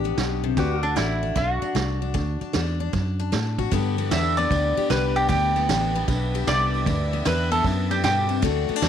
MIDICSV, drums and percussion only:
0, 0, Header, 1, 2, 480
1, 0, Start_track
1, 0, Key_signature, 1, "major"
1, 0, Tempo, 392670
1, 707, Time_signature, 4, 2, 24, 8
1, 10862, End_track
2, 0, Start_track
2, 0, Title_t, "Drums"
2, 45, Note_on_c, 9, 42, 61
2, 167, Note_off_c, 9, 42, 0
2, 214, Note_on_c, 9, 38, 107
2, 214, Note_on_c, 9, 42, 63
2, 336, Note_off_c, 9, 38, 0
2, 336, Note_off_c, 9, 42, 0
2, 697, Note_on_c, 9, 36, 114
2, 701, Note_on_c, 9, 42, 65
2, 820, Note_off_c, 9, 36, 0
2, 823, Note_off_c, 9, 42, 0
2, 1020, Note_on_c, 9, 42, 63
2, 1142, Note_off_c, 9, 42, 0
2, 1180, Note_on_c, 9, 38, 109
2, 1180, Note_on_c, 9, 42, 68
2, 1302, Note_off_c, 9, 38, 0
2, 1302, Note_off_c, 9, 42, 0
2, 1661, Note_on_c, 9, 36, 110
2, 1663, Note_on_c, 9, 42, 60
2, 1783, Note_off_c, 9, 36, 0
2, 1785, Note_off_c, 9, 42, 0
2, 1985, Note_on_c, 9, 42, 60
2, 2107, Note_off_c, 9, 42, 0
2, 2147, Note_on_c, 9, 38, 110
2, 2147, Note_on_c, 9, 42, 62
2, 2269, Note_off_c, 9, 38, 0
2, 2269, Note_off_c, 9, 42, 0
2, 2624, Note_on_c, 9, 36, 111
2, 2624, Note_on_c, 9, 42, 61
2, 2746, Note_off_c, 9, 36, 0
2, 2746, Note_off_c, 9, 42, 0
2, 2942, Note_on_c, 9, 42, 60
2, 3064, Note_off_c, 9, 42, 0
2, 3098, Note_on_c, 9, 38, 106
2, 3098, Note_on_c, 9, 42, 56
2, 3221, Note_off_c, 9, 38, 0
2, 3221, Note_off_c, 9, 42, 0
2, 3585, Note_on_c, 9, 42, 59
2, 3586, Note_on_c, 9, 36, 109
2, 3707, Note_off_c, 9, 42, 0
2, 3708, Note_off_c, 9, 36, 0
2, 3902, Note_on_c, 9, 42, 61
2, 4024, Note_off_c, 9, 42, 0
2, 4063, Note_on_c, 9, 38, 111
2, 4063, Note_on_c, 9, 42, 61
2, 4185, Note_off_c, 9, 38, 0
2, 4185, Note_off_c, 9, 42, 0
2, 4382, Note_on_c, 9, 36, 75
2, 4504, Note_off_c, 9, 36, 0
2, 4543, Note_on_c, 9, 51, 95
2, 4546, Note_on_c, 9, 36, 120
2, 4665, Note_off_c, 9, 51, 0
2, 4669, Note_off_c, 9, 36, 0
2, 4862, Note_on_c, 9, 51, 64
2, 4984, Note_off_c, 9, 51, 0
2, 5026, Note_on_c, 9, 38, 111
2, 5026, Note_on_c, 9, 51, 95
2, 5148, Note_off_c, 9, 38, 0
2, 5148, Note_off_c, 9, 51, 0
2, 5349, Note_on_c, 9, 51, 68
2, 5471, Note_off_c, 9, 51, 0
2, 5509, Note_on_c, 9, 36, 114
2, 5510, Note_on_c, 9, 51, 87
2, 5631, Note_off_c, 9, 36, 0
2, 5632, Note_off_c, 9, 51, 0
2, 5829, Note_on_c, 9, 51, 72
2, 5951, Note_off_c, 9, 51, 0
2, 5990, Note_on_c, 9, 38, 116
2, 5990, Note_on_c, 9, 51, 80
2, 6112, Note_off_c, 9, 38, 0
2, 6112, Note_off_c, 9, 51, 0
2, 6307, Note_on_c, 9, 51, 62
2, 6429, Note_off_c, 9, 51, 0
2, 6471, Note_on_c, 9, 36, 110
2, 6472, Note_on_c, 9, 51, 90
2, 6594, Note_off_c, 9, 36, 0
2, 6595, Note_off_c, 9, 51, 0
2, 6788, Note_on_c, 9, 51, 60
2, 6910, Note_off_c, 9, 51, 0
2, 6955, Note_on_c, 9, 38, 122
2, 6955, Note_on_c, 9, 51, 90
2, 7077, Note_off_c, 9, 38, 0
2, 7077, Note_off_c, 9, 51, 0
2, 7267, Note_on_c, 9, 51, 63
2, 7389, Note_off_c, 9, 51, 0
2, 7432, Note_on_c, 9, 36, 112
2, 7434, Note_on_c, 9, 51, 86
2, 7554, Note_off_c, 9, 36, 0
2, 7556, Note_off_c, 9, 51, 0
2, 7748, Note_on_c, 9, 51, 70
2, 7870, Note_off_c, 9, 51, 0
2, 7912, Note_on_c, 9, 38, 115
2, 7912, Note_on_c, 9, 51, 88
2, 8034, Note_off_c, 9, 38, 0
2, 8034, Note_off_c, 9, 51, 0
2, 8227, Note_on_c, 9, 51, 69
2, 8349, Note_off_c, 9, 51, 0
2, 8388, Note_on_c, 9, 51, 90
2, 8390, Note_on_c, 9, 36, 112
2, 8510, Note_off_c, 9, 51, 0
2, 8513, Note_off_c, 9, 36, 0
2, 8707, Note_on_c, 9, 51, 68
2, 8829, Note_off_c, 9, 51, 0
2, 8866, Note_on_c, 9, 38, 118
2, 8866, Note_on_c, 9, 51, 97
2, 8988, Note_off_c, 9, 38, 0
2, 8988, Note_off_c, 9, 51, 0
2, 9183, Note_on_c, 9, 51, 77
2, 9305, Note_off_c, 9, 51, 0
2, 9344, Note_on_c, 9, 51, 96
2, 9345, Note_on_c, 9, 36, 122
2, 9467, Note_off_c, 9, 36, 0
2, 9467, Note_off_c, 9, 51, 0
2, 9665, Note_on_c, 9, 51, 67
2, 9787, Note_off_c, 9, 51, 0
2, 9825, Note_on_c, 9, 38, 125
2, 9825, Note_on_c, 9, 51, 88
2, 9947, Note_off_c, 9, 38, 0
2, 9947, Note_off_c, 9, 51, 0
2, 10140, Note_on_c, 9, 51, 68
2, 10262, Note_off_c, 9, 51, 0
2, 10301, Note_on_c, 9, 51, 83
2, 10302, Note_on_c, 9, 36, 127
2, 10424, Note_off_c, 9, 36, 0
2, 10424, Note_off_c, 9, 51, 0
2, 10622, Note_on_c, 9, 51, 59
2, 10744, Note_off_c, 9, 51, 0
2, 10782, Note_on_c, 9, 38, 107
2, 10782, Note_on_c, 9, 51, 83
2, 10862, Note_off_c, 9, 38, 0
2, 10862, Note_off_c, 9, 51, 0
2, 10862, End_track
0, 0, End_of_file